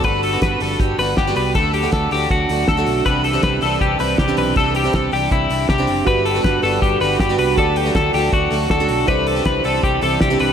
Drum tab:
HH |xoxoxoxo|xoxoxoxo|xoxoxoxo|xoxoxoxo|
SD |--o---o-|--o---o-|--o---o-|--o---o-|
BD |o-o-o-o-|o-o-o-o-|o-o-o-o-|o-o-o-o-|

HH |xoxoxoxo|xoxoxo-o|xoxoxoxo|
SD |--o---o-|--o---o-|--o---o-|
BD |o-o-o-o-|o-o-o-o-|o-o-o-o-|